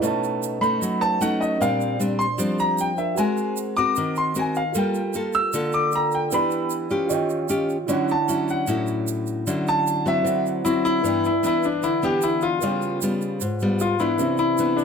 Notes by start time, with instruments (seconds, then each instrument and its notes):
0.00 nylon-string guitar B2 A3 C#4 D#4, grand piano D#4 B4 C#5, shaker
0.05 grand piano A5
0.24 shaker
0.43 shaker
0.61 nylon-string guitar A3 C#4 D#4, grand piano B5, shaker
0.82 nylon-string guitar F#3, shaker
1.00 grand piano D#4 B4 C#5 A5, shaker
1.21 nylon-string guitar A3 C#4 D#4, grand piano F#5, shaker
1.41 grand piano D#5, shaker
1.57 nylon-string guitar A#2 G3, grand piano D4 A#4 C5
1.61 nylon-string guitar C4 D4, grand piano F5 G5, shaker
1.81 shaker
2.00 nylon-string guitar G3 C4 D4, shaker
2.19 grand piano C6, shaker
2.38 nylon-string guitar F3 G3 C4 D4, shaker
2.59 grand piano A#5, shaker
2.78 grand piano G5, shaker
2.96 grand piano D4 A#4 C5 E5 G5, shaker
3.14 grand piano F#4 A#4 G#5, shaker
3.18 nylon-string guitar G#3 C4 F#4 A#4, grand piano C5 G#5
3.37 shaker
3.57 shaker
3.77 nylon-string guitar C4 F#4 A#4, grand piano D6, shaker
3.96 nylon-string guitar D#3, shaker
4.16 grand piano C6, shaker
4.35 nylon-string guitar C4 F#4 A#4, shaker
4.39 grand piano G#5
4.55 grand piano F5, shaker
4.72 nylon-string guitar G3 A#3 F4, grand piano F4 A4 A#4, shaker
4.76 nylon-string guitar A4, grand piano G5
4.95 shaker
5.14 nylon-string guitar A#3 F4 A4, shaker
5.33 grand piano E6, shaker
5.53 nylon-string guitar D3 A#3 F4 A4, shaker
5.72 grand piano D6, shaker
5.92 grand piano F4 A4 G5 A#5, shaker
6.12 grand piano G5, shaker
6.30 nylon-string guitar E3 B3 D4 G4, grand piano E4 B4, shaker
6.34 grand piano D5 G5 B5
6.51 shaker
6.70 shaker
6.90 nylon-string guitar C#4 F4 G4, shaker
7.07 nylon-string guitar D#3, grand piano F4 C#5, shaker
7.11 grand piano D#5 G5
7.30 shaker
7.49 nylon-string guitar C#4 F4 G4, shaker
7.69 shaker
7.86 nylon-string guitar D3 F#3 C#4 E4, grand piano E4 C#5, shaker
7.91 grand piano D4 F#5
8.09 grand piano A5, shaker
8.28 nylon-string guitar F#3 C#4 E4, shaker
8.48 grand piano F#5, shaker
8.67 nylon-string guitar A2 F#3 C#4 E4, shaker
8.87 shaker
9.07 shaker
9.27 shaker
9.47 nylon-string guitar D3 F#3 C#4 E4, shaker
9.67 grand piano A5, shaker
9.87 shaker
10.06 nylon-string guitar F#3 C4 E4, grand piano E5, shaker
10.23 nylon-string guitar D3, grand piano E4 C5, shaker
10.27 grand piano D5 F#5
10.46 shaker
10.65 nylon-string guitar F#3 C4 E4, grand piano E4, shaker
10.85 grand piano E4, shaker
11.01 nylon-string guitar G2 E3 B3 D4, grand piano E4 B4 D5, shaker
11.07 grand piano G5
11.25 grand piano E4, shaker
11.43 nylon-string guitar E3 B3 D4, grand piano E4, shaker
11.63 grand piano D4, shaker
11.83 nylon-string guitar D3, grand piano E4, shaker
12.02 nylon-string guitar E3 B3 D4, grand piano G4, shaker
12.22 grand piano E4, shaker
12.41 grand piano F4, shaker
12.59 nylon-string guitar C#3, grand piano F4 B4 C#5, shaker
12.63 nylon-string guitar G3 B3 F4, grand piano G5
12.82 shaker
13.02 nylon-string guitar G3 B3 F4, shaker
13.21 shaker
13.41 nylon-string guitar G#2, shaker
13.60 nylon-string guitar G3 B3 F4, shaker
13.80 grand piano F4, shaker
13.99 nylon-string guitar E3 B3 D4, grand piano E4, shaker
14.16 nylon-string guitar C3, grand piano D4 B4, shaker
14.20 grand piano C4 E5
14.38 grand piano E4, shaker
14.58 nylon-string guitar E3 B3 D4, shaker
14.77 grand piano D4, shaker